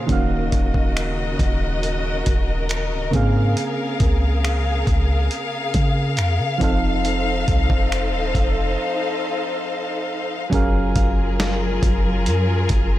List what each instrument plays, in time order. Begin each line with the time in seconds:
Already playing: synth keys A#2 A#3 C#4, string section C#3
0.07 808-style bass D#1, synth keys D#3 A#3 C#4, string section F#4 A#4 D#5, kick, closed hi-hat
0.11 synth keys F#4 F5
0.52 808-style bass D#1, kick, closed hi-hat
0.74 kick
0.97 finger snap, closed hi-hat
1.39 808-style bass D#1, kick, closed hi-hat
1.83 closed hi-hat
2.26 808-style bass D#1, kick, closed hi-hat
2.69 finger snap, closed hi-hat
2.92 808-style bass C#1
3.11 808-style bass G#2, synth keys C#3 A#3 C4, string section G#4 F5, kick, closed hi-hat
3.15 synth keys G#4 F5
3.57 closed hi-hat
4.00 808-style bass C#2, kick, closed hi-hat
4.45 finger snap, closed hi-hat
4.87 808-style bass C#2, kick, closed hi-hat
5.31 closed hi-hat
5.74 808-style bass C#3, kick, closed hi-hat
6.17 808-style bass F2, finger snap, closed hi-hat
6.39 808-style bass C#3
6.58 808-style bass F1, synth keys F3 C4 D#4, string section D#4 A4 C5, kick, closed hi-hat
6.63 synth keys A4 F5
7.05 closed hi-hat
7.48 808-style bass C2, kick, closed hi-hat
7.70 808-style bass F1, kick
7.92 finger snap, closed hi-hat
8.13 808-style bass D#1
8.35 808-style bass F1, kick, closed hi-hat
10.50 808-style bass F#1, synth keys F#3 C#4 G#4, string section F#3 F4 G#4 A#4, kick, closed hi-hat
10.54 synth keys A#4 F5
10.96 808-style bass F#1, synth bell F5, kick, closed hi-hat
11.40 snare, closed hi-hat
11.83 808-style bass F#1, kick, closed hi-hat
12.26 808-style bass F#2, closed hi-hat
12.69 808-style bass F#1, kick, closed hi-hat